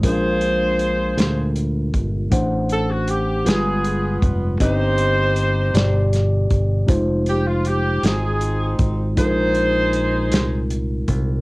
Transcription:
<<
  \new Staff \with { instrumentName = "Saxophone section" } { \time 6/8 \key bes \mixolydian \tempo 4. = 53 << { c''2 r4 | r8 a'16 fis'16 g'8 aes'4 r8 | c''2 r4 | r8 g'16 f'16 g'8 aes'4 r8 |
c''2 r4 | } \\ { <f' aes'>2 r4 | r4. <b f'>4. | <ees' g'>2 r4 | r4. <c' ees'>4. |
<ees' aes'>2 r4 | } >> }
  \new Staff \with { instrumentName = "Tine electric piano" } { \time 6/8 \key bes \mixolydian <aes des' d' f' bes'>2. | <a d' c'' fis''>4. <g aes f' b'>4. | <c' ees' g' ees''>4. <b, g' d''>4. | <aes ees' f' c''>2. |
<aes ees' f' a' bes'>2. | }
  \new Staff \with { instrumentName = "Tine electric piano" } { \clef bass \time 6/8 \key bes \mixolydian bes,4. r4. | a,4. g,4. | g,4. g,4. | r2. |
bes,4. r4. | }
  \new Staff \with { instrumentName = "Fingered electric bass" } { \clef bass \time 6/8 \key bes \mixolydian bes,,4. d,4 g,,8 | a,,4. g,,4 f,,8 | g,,4. g,,4 g,,8 | f,,4. aes,,4 aes,,8 |
bes,,4. c,4 c,8 | }
  \new DrumStaff \with { instrumentName = "Drums" } \drummode { \time 6/8 <hh bd>8 hh8 hh8 <hh sn>8 hh8 <hh bd>8 | <hh bd>8 hh8 hh8 <hh sn>8 hh8 <hh bd>8 | <hh bd>8 hh8 hh8 <hh sn>8 <hh sn>8 <hh bd>8 | <hh bd>8 hh8 hh8 <hh sn>8 hh8 <hh bd>8 |
<hh bd>8 hh8 hh8 <hh sn>8 hh8 <hh bd>8 | }
>>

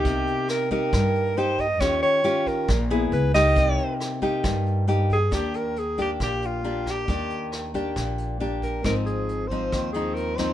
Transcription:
<<
  \new Staff \with { instrumentName = "Alto saxophone" } { \time 4/4 \key c \phrygian \tempo 4 = 136 g'4 bes'8 bes'4. c''8 ees''8 | des''8 des''4 bes'4 r8 ces''8 ees''8~ | ees''4 r2 r8 aes'8 | \key ees \major g'8 bes'8 aes'8 g'8 g'8 f'4 g'8~ |
g'4 r2 r8 bes'8 | bes'8 aes'4 c''4 aes'8 bes'8 c''8 | }
  \new Staff \with { instrumentName = "Nylon-string guitar" } { \time 4/4 \key c \phrygian << { <bes ees' g'>4. <bes ees' g'>4. <bes ees' g'>8 r8 | <des' f' g'>4 <des' f' g'>4 r8 <ces' fes' aes'>4 <bes ees' g'>8~ | <bes ees' g'>4. <bes ees' g'>4. <bes ees' g'>8 r8 | \key ees \major <bes d' g'>4 r8 <bes d' g'>4. <bes d' g'>4 |
<bes d' g'>4. <bes d' g'>4. <bes d' g'>4 | <f c' ees'>4. <f c' ees'>4 <f c' ees'>4 <f c' ees'>8 | } \\ { c2 g,2 | ees2 bes,4 r4 | c2 g,2 | ees2 bes,2 |
ees2 bes,2 | aes,2 ees2 | } >> }
  \new Staff \with { instrumentName = "Upright bass" } { \clef bass \time 4/4 \key c \phrygian c,8 r4. g,2 | ees,8 r4. bes,,4 des,4 | c,8 r4. g,2 | \key ees \major ees,2 bes,,2 |
ees,2 bes,,2 | aes,,2 ees,2 | }
  \new DrumStaff \with { instrumentName = "Drums" } \drummode { \time 4/4 <hh bd>8 hh8 <hh ss>8 <hh bd>8 <hh bd ss>8 hh8 hh8 <hh bd>8 | <hh bd ss>8 hh8 hh8 <hh bd>8 <hh bd ss>8 hh8 hh8 <hh bd ss>8 | <hh bd>8 hh8 <hh ss>8 <hh bd>8 <hh bd ss>8 hh8 hh8 <hh bd>8 | <hh bd ss>8 hh8 hh8 <hh bd>8 <hh bd ss>8 hh8 hh8 <hh bd ss>8 |
<hh bd>8 hh8 <hh ss>8 <hh bd>8 <hh bd ss>8 hh8 hh8 <hh bd>8 | <hh bd ss>8 hh8 hh8 <hh bd>8 <hh bd ss>8 hh8 hh8 <hh bd ss>8 | }
>>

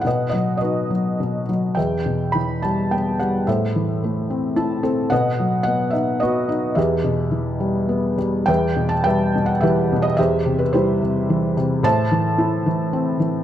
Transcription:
<<
  \new Staff \with { instrumentName = "Felt piano" } { \time 3/4 \key e \minor \tempo 4 = 108 << { fis''8 dis''8 dis''4. r8 | g''4 b''8 a''8 g''8 fis''8 | e''2 a''8 a'8 | fis''4 fis''8 e''8 dis''4 |
e''2~ e''8 r8 | g''8. a''16 g''8. fis''16 e''8. dis''16 | e''8. b'16 c''4. r8 | a''2. | } \\ { <b' dis''>4 <fis' b'>4. r8 | <b' e''>4. r4. | <a' c''>2 r4 | <b' dis''>4. r8 <fis' b'>4 |
<g' b'>2~ <g' b'>8 r8 | <b' e''>4 <b' e''>4 <g' b'>4 | <g' c''>4 <e' g'>4. r8 | <c'' e''>2. | } >> }
  \new Staff \with { instrumentName = "Felt piano" } { \clef bass \time 3/4 \key e \minor b,8 fis8 dis'8 fis8 b,8 fis8 | e,8 b,8 e8 g8 b8 g8 | a,8 e8 a8 c'8 e'8 c'8 | b,8 fis8 b8 dis'8 b8 dis'8 |
e,8 b,8 e8 g8 b8 g8 | e,8 b,8 g8 b,8 e8 b,8 | e,8 c8 g8 c8 e8 c8 | a,8 e8 e'8 e8 c'8 e8 | }
>>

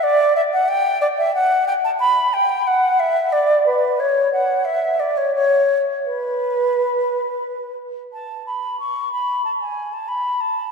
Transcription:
\new Staff \with { instrumentName = "Flute" } { \time 4/4 \key b \minor \tempo 4 = 90 d''8 e''16 fis''16 g''8 d''16 e''16 fis''8 g''16 a''16 b''8 g''8 | fis''8 e''8 d''8 b'8 cis''8 fis''8 e''8 d''16 cis''16 | cis''8. r16 b'2~ b'8 r8 | \key b \dorian a''8 b''8 cis'''8 b''8 a''16 gis''8 a''16 b''8 a''8 | }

